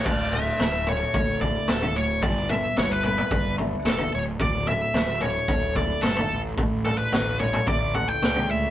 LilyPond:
<<
  \new Staff \with { instrumentName = "Lead electric guitar" } { \time 4/4 \key a \mixolydian \tempo 4 = 110 d''8 e''4 cis''4 d''8 a'8 cis''8 | d''8 e''8 cis''16 b'16 b'4 r8 a'8 cis''8 | d''8 e''4 cis''4 d''8 a'8. r16 | r8 a'16 b'8. cis''8 d''8 fis''16 g''8. e''8 | }
  \new Staff \with { instrumentName = "Clean electric guitar" } { \time 4/4 \key a \mixolydian d,8 d8 e'8 d8 a8 e'8 d8 a,8 | g,8 b8 e'8 b8 d'8 e'8 b8 d,8 | d,8 d8 e'8 d8 a8 e'8 d8 a,8 | a,8 d'8 a'8 d'8 e'8 a'8 d'8 a8 | }
  \new Staff \with { instrumentName = "Picked electric bass" } { \clef bass \time 4/4 \key a \mixolydian d,,4 d,,4 d,,4 d,,4 | g,,4 g,,4 g,,4 e,,8 d,,8 | d,,4 d,,4 d,,4 g,,8 a,,8 | a,,4 a,,4 a,,4 cis,4 | }
  \new DrumStaff \with { instrumentName = "Drums" } \drummode { \time 4/4 <cymc bd tomfh>8 toml8 <sn tomfh>8 toml8 <bd tomfh>8 <bd tomfh>8 <sn toml>16 tomfh8. | <bd tomfh>8 toml8 <sn tomfh>8 toml16 toml16 <bd tomfh>8 tomfh8 <sn toml>16 tomfh8. | <bd tomfh>8 toml8 <sn tomfh>8 toml8 <bd tomfh>8 <bd tomfh>8 <sn toml>16 tomfh8. | <bd tomfh>8 toml8 <sn tomfh>8 toml16 toml16 <bd tomfh>8 tomfh8 <sn toml>16 tomfh8. | }
>>